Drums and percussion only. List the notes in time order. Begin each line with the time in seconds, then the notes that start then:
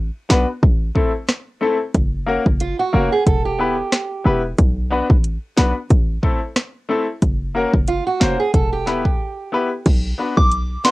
0.30 snare
0.63 kick
0.96 kick
1.29 cross-stick, snare
1.95 kick, closed hi-hat
2.46 kick
2.60 closed hi-hat
3.27 kick, closed hi-hat
3.92 cross-stick, snare, closed hi-hat
4.58 kick, closed hi-hat
5.10 kick
5.24 closed hi-hat
5.57 snare
5.90 kick, closed hi-hat
6.23 kick
6.56 cross-stick, snare, closed hi-hat
7.22 kick, closed hi-hat
7.74 kick
7.88 closed hi-hat
8.21 snare
8.54 kick, closed hi-hat
8.87 snare
9.05 kick
9.86 kick, closed hi-hat, crash
10.37 kick
10.52 closed hi-hat
10.85 snare